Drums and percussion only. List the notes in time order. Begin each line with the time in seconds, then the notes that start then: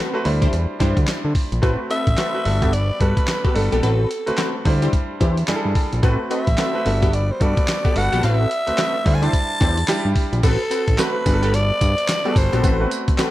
0.25 open hi-hat
0.42 kick, closed hi-hat
0.53 closed hi-hat
0.80 kick, snare, closed hi-hat
0.97 kick, closed hi-hat
1.07 snare, clap, closed hi-hat
1.35 kick, open hi-hat
1.52 closed hi-hat
1.63 kick, closed hi-hat
1.91 closed hi-hat
2.07 kick, closed hi-hat
2.17 snare, clap, closed hi-hat
2.45 open hi-hat
2.62 kick, closed hi-hat
2.73 closed hi-hat
3.01 kick, closed hi-hat
3.17 kick, closed hi-hat
3.28 snare, clap, closed hi-hat
3.45 kick
3.56 open hi-hat
3.73 closed hi-hat
3.83 closed hi-hat
4.11 closed hi-hat
4.27 closed hi-hat
4.38 snare, clap, closed hi-hat
4.65 kick, open hi-hat
4.82 closed hi-hat
4.93 kick, closed hi-hat
5.21 kick, closed hi-hat
5.37 closed hi-hat
5.48 snare, clap, closed hi-hat
5.75 kick, open hi-hat
5.93 closed hi-hat
6.03 kick, closed hi-hat
6.31 closed hi-hat
6.47 kick, closed hi-hat
6.58 snare, clap, closed hi-hat
6.86 open hi-hat
7.02 kick, closed hi-hat
7.13 closed hi-hat
7.41 kick, closed hi-hat
7.57 kick, closed hi-hat
7.68 snare, clap, closed hi-hat
7.85 kick
7.96 open hi-hat
8.13 closed hi-hat
8.23 closed hi-hat
8.51 closed hi-hat
8.67 closed hi-hat
8.78 snare, clap, closed hi-hat
9.06 kick, open hi-hat
9.23 closed hi-hat
9.33 kick, closed hi-hat
9.61 kick, snare, closed hi-hat
9.77 closed hi-hat
9.88 snare, clap, closed hi-hat
10.16 kick, open hi-hat
10.33 closed hi-hat
10.43 kick, closed hi-hat, crash, tambourine
10.71 closed hi-hat, tambourine
10.88 kick, closed hi-hat
10.98 snare, clap, closed hi-hat, tambourine
11.26 kick, open hi-hat, tambourine
11.43 closed hi-hat
11.54 closed hi-hat
11.81 kick, closed hi-hat, tambourine
11.98 closed hi-hat
12.08 snare, clap, closed hi-hat, tambourine
12.36 kick, open hi-hat, tambourine
12.53 closed hi-hat
12.64 kick, closed hi-hat, tambourine
12.91 closed hi-hat, tambourine
13.08 kick, closed hi-hat
13.18 snare, clap, closed hi-hat, tambourine